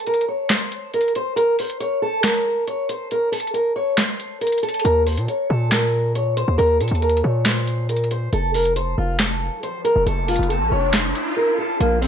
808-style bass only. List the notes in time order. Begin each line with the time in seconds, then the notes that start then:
4.85 D#2
5.18 A#2
5.50 A#2
6.48 D#2
6.59 D#2
6.81 A#2
6.91 D#2
7.24 A#2
8.33 F1
8.98 F1
9.96 F1
10.07 F1
10.39 F1
10.61 A1
10.72 F1
11.81 A#1